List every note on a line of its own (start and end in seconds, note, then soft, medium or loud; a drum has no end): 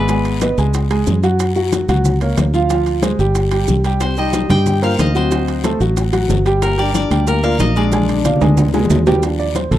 0.00 0.52 G#1 medium
0.00 0.54 B3 medium
0.00 1.72 B4 medium
0.00 1.38 D5 medium
0.00 1.11 E5 medium
0.00 0.68 F#5 loud
0.08 0.36 G#3 medium
0.08 0.36 G#4 medium
0.08 0.36 G#5 medium
0.08 high bongo medium
0.08 high timbale medium
0.08 long guiro medium
0.08 maracas medium
0.25 high bongo soft
0.25 high conga soft
0.25 high timbale medium
0.25 maracas soft
0.41 0.55 B3 medium
0.41 0.55 B4 medium
0.41 0.56 D#5 medium
0.41 high bongo medium
0.41 high conga medium
0.41 high timbale medium
0.41 short guiro medium
0.41 maracas medium
0.58 1.03 C#2 medium
0.58 0.85 G#3 medium
0.58 0.85 G#4 medium
0.58 0.85 G#5 medium
0.58 high conga soft
0.58 short guiro medium
0.58 maracas soft
0.74 high bongo medium
0.74 high conga soft
0.74 high timbale medium
0.74 long guiro medium
0.74 maracas medium
0.90 1.17 G#3 medium
0.90 1.17 G#4 medium
0.90 1.18 G#5 medium
0.90 high bongo soft
0.90 high conga soft
0.90 high timbale medium
0.90 maracas soft
1.06 1.83 F#2 medium
1.06 high bongo soft
1.06 low bongo medium
1.06 high conga medium
1.06 short guiro medium
1.06 maracas medium
1.23 1.50 F#3 medium
1.23 1.50 F#4 medium
1.23 1.50 F#5 medium
1.23 high conga soft
1.23 high timbale medium
1.23 short guiro medium
1.23 maracas soft
1.39 high bongo medium
1.39 high timbale loud
1.39 long guiro medium
1.39 maracas medium
1.56 1.83 F#3 medium
1.56 1.83 F#4 medium
1.56 1.83 F#5 medium
1.56 high bongo soft
1.56 high conga soft
1.56 maracas soft
1.72 high bongo medium
1.72 high conga medium
1.72 high timbale medium
1.72 short guiro medium
1.72 maracas medium
1.88 2.34 C#2 loud
1.88 2.15 F#3 medium
1.88 2.16 F#4 medium
1.88 2.16 F#5 medium
1.88 high conga soft
1.88 low conga medium
1.88 high timbale medium
1.88 short guiro medium
1.88 maracas soft
2.05 high bongo medium
2.05 high conga soft
2.05 low conga medium
2.05 long guiro medium
2.05 maracas medium
2.21 2.48 A#3 medium
2.21 2.48 A#4 medium
2.21 2.48 C#5 medium
2.21 high bongo soft
2.21 high timbale medium
2.21 maracas soft
2.37 3.14 D2 medium
2.37 high bongo soft
2.37 low bongo medium
2.37 high conga medium
2.37 high timbale medium
2.37 low timbale medium
2.37 short guiro medium
2.37 maracas medium
2.54 2.67 F3 medium
2.54 2.67 F4 medium
2.54 2.68 F5 medium
2.54 high bongo soft
2.54 high conga soft
2.54 short guiro medium
2.54 maracas soft
2.70 2.97 F3 medium
2.70 2.97 F4 medium
2.70 2.97 F5 medium
2.70 high bongo medium
2.70 high timbale medium
2.70 long guiro medium
2.70 maracas medium
2.86 high bongo soft
2.86 high conga soft
2.86 high timbale medium
2.86 maracas soft
3.02 3.16 G#3 medium
3.02 3.16 G#4 medium
3.02 3.16 C5 medium
3.02 high bongo medium
3.02 high conga medium
3.02 high timbale medium
3.02 short guiro medium
3.02 maracas medium
3.19 3.65 G1 medium
3.19 3.46 G3 medium
3.19 3.46 G4 medium
3.19 3.46 G5 medium
3.19 high conga soft
3.19 short guiro medium
3.19 maracas soft
3.35 high bongo medium
3.35 high conga soft
3.35 high timbale medium
3.35 long guiro medium
3.35 maracas medium
3.51 3.79 G3 medium
3.51 3.79 G4 medium
3.51 3.79 G5 medium
3.51 high bongo soft
3.51 high conga soft
3.51 high timbale medium
3.51 maracas soft
3.68 4.44 C2 medium
3.68 high bongo soft
3.68 low bongo medium
3.68 high conga medium
3.68 short guiro medium
3.68 maracas medium
3.84 4.11 G3 medium
3.84 4.12 G4 medium
3.84 4.12 G5 medium
3.84 high bongo soft
3.84 high conga soft
3.84 high timbale medium
3.84 short guiro medium
3.84 maracas soft
4.00 4.16 C4 medium
4.00 5.16 C5 medium
4.00 high bongo medium
4.00 high conga soft
4.00 high timbale loud
4.00 long guiro medium
4.00 maracas medium
4.17 4.44 G3 medium
4.17 4.48 D#4 medium
4.17 4.44 G4 medium
4.17 5.00 D#5 medium
4.17 4.44 G5 medium
4.17 high bongo soft
4.17 high conga soft
4.17 maracas soft
4.33 high bongo medium
4.33 high conga medium
4.33 high timbale medium
4.33 short guiro medium
4.33 maracas medium
4.49 4.95 G2 medium
4.49 4.76 G3 medium
4.49 4.77 G4 medium
4.49 4.80 G4 medium
4.49 4.77 G5 medium
4.49 5.85 G5 loud
4.49 high conga soft
4.49 low conga medium
4.49 high timbale medium
4.49 short guiro medium
4.49 maracas soft
4.66 high bongo medium
4.66 high conga soft
4.66 low conga medium
4.66 long guiro medium
4.66 maracas medium
4.82 5.09 A#3 medium
4.82 4.97 F4 medium
4.82 5.09 A#4 medium
4.82 5.09 C5 medium
4.82 6.28 F5 loud
4.82 high bongo soft
4.82 high timbale medium
4.82 maracas soft
4.99 5.75 D2 medium
4.99 5.14 D#4 medium
4.99 6.55 D#5 medium
4.99 high bongo soft
4.99 low bongo medium
4.99 high conga medium
4.99 high timbale medium
4.99 short guiro medium
4.99 maracas medium
5.15 5.28 F#3 medium
5.15 5.76 C4 medium
5.15 5.28 F#4 medium
5.15 6.88 C5 medium
5.15 5.29 F#5 medium
5.15 high bongo soft
5.15 high conga soft
5.15 short guiro medium
5.15 maracas soft
5.31 5.58 F#3 medium
5.31 5.58 F#4 medium
5.31 5.58 F#5 medium
5.31 high bongo medium
5.31 high timbale medium
5.31 long guiro medium
5.31 maracas medium
5.48 high bongo soft
5.48 high conga soft
5.48 high timbale medium
5.48 maracas soft
5.64 5.77 A3 medium
5.64 5.78 A4 medium
5.64 5.78 C5 medium
5.64 high bongo medium
5.64 high conga medium
5.64 high timbale medium
5.64 short guiro medium
5.64 maracas medium
5.80 6.26 A1 medium
5.80 6.07 F#3 medium
5.80 6.07 F#4 medium
5.80 6.07 F#5 medium
5.80 high conga soft
5.80 short guiro medium
5.80 maracas soft
5.96 high bongo medium
5.96 high conga soft
5.96 high timbale medium
5.96 long guiro medium
5.96 maracas medium
6.12 6.39 F#3 medium
6.12 6.40 F#4 medium
6.12 6.40 F#5 medium
6.12 high bongo soft
6.12 high conga soft
6.12 high timbale medium
6.12 maracas soft
6.28 7.05 G1 medium
6.28 high bongo soft
6.28 low bongo medium
6.28 high conga medium
6.28 low timbale medium
6.28 short guiro medium
6.28 maracas medium
6.45 6.72 G3 medium
6.45 6.72 G4 medium
6.45 6.73 G5 medium
6.45 high bongo soft
6.45 high conga soft
6.45 high timbale medium
6.45 short guiro medium
6.45 maracas soft
6.62 6.77 A#3 medium
6.62 7.27 A#4 medium
6.62 high bongo medium
6.62 high conga soft
6.62 high timbale medium
6.62 long guiro medium
6.62 maracas medium
6.78 7.05 G3 medium
6.78 6.93 D4 medium
6.78 7.05 G4 medium
6.78 6.95 D5 medium
6.78 7.05 G5 medium
6.78 high bongo soft
6.78 high conga soft
6.78 maracas soft
6.94 7.25 D4 medium
6.94 7.66 D5 medium
6.94 high bongo medium
6.94 high conga medium
6.94 high timbale medium
6.94 short guiro medium
6.94 maracas medium
7.10 7.56 D2 medium
7.10 7.37 G3 medium
7.10 7.37 G4 medium
7.10 7.38 G5 medium
7.10 high conga soft
7.10 low conga medium
7.10 high timbale medium
7.10 short guiro medium
7.10 maracas soft
7.27 7.42 A#3 medium
7.27 9.12 A#4 medium
7.27 high bongo medium
7.27 high conga soft
7.27 long guiro medium
7.27 maracas medium
7.43 7.70 A#3 medium
7.43 7.59 F4 medium
7.43 7.70 A#4 medium
7.43 7.70 D5 medium
7.43 8.88 F5 loud
7.43 high bongo soft
7.43 high conga soft
7.43 high timbale medium
7.43 maracas soft
7.59 8.36 A#1 medium
7.59 7.75 D#4 medium
7.59 7.83 D#5 loud
7.59 high bongo soft
7.59 low bongo medium
7.59 high conga medium
7.59 high timbale medium
7.59 low timbale medium
7.59 short guiro medium
7.59 maracas medium
7.75 7.90 G#3 medium
7.75 9.02 D4 medium
7.75 7.90 G#4 medium
7.75 9.37 D5 medium
7.75 7.90 G#5 medium
7.75 high bongo soft
7.75 high conga soft
7.75 short guiro medium
7.75 maracas soft
7.92 8.19 G#3 medium
7.92 8.20 G#4 medium
7.92 8.20 G#5 medium
7.92 high bongo medium
7.92 high conga medium
7.92 high timbale medium
7.92 long guiro medium
7.92 maracas medium
8.03 high conga medium
8.08 high bongo soft
8.08 high timbale medium
8.08 maracas soft
8.14 high conga medium
8.25 8.38 D4 medium
8.25 8.38 D5 medium
8.25 8.38 F5 medium
8.25 high bongo medium
8.25 low conga medium
8.25 high timbale medium
8.25 short guiro medium
8.25 maracas medium
8.36 low conga loud
8.41 8.87 D2 medium
8.41 8.68 G#3 medium
8.41 8.68 G#4 medium
8.41 8.68 G#5 medium
8.41 high timbale loud
8.41 short guiro medium
8.41 maracas soft
8.46 low conga medium
8.57 high bongo medium
8.57 low conga loud
8.57 high timbale medium
8.57 long guiro medium
8.57 maracas medium
8.68 low conga medium
8.73 9.00 G#3 medium
8.73 9.01 G#4 medium
8.73 9.01 G#5 medium
8.73 high bongo medium
8.73 low timbale medium
8.73 maracas soft
8.79 low conga medium
8.85 low bongo medium
8.90 9.66 D#2 medium
8.90 low conga medium
8.90 low timbale medium
8.90 short guiro medium
8.90 maracas medium
8.95 low bongo loud
9.06 9.20 G3 medium
9.06 9.20 G4 medium
9.06 9.20 G5 medium
9.06 low bongo medium
9.06 low timbale loud
9.06 short guiro medium
9.06 maracas soft
9.12 low conga loud
9.22 9.44 F3 medium
9.22 9.44 G3 soft
9.22 9.45 D4 medium
9.22 high bongo medium
9.22 high conga soft
9.22 high timbale medium
9.22 long guiro medium
9.22 maracas medium
9.39 9.55 D5 medium
9.39 high bongo soft
9.39 high conga soft
9.39 maracas soft
9.55 9.71 C5 medium
9.55 high bongo medium
9.55 high conga medium
9.55 high timbale medium
9.55 short guiro medium
9.55 maracas medium
9.71 9.79 A#1 medium
9.71 9.79 A4 medium
9.71 high conga soft
9.71 low conga medium
9.71 high timbale medium
9.71 short guiro medium
9.71 maracas soft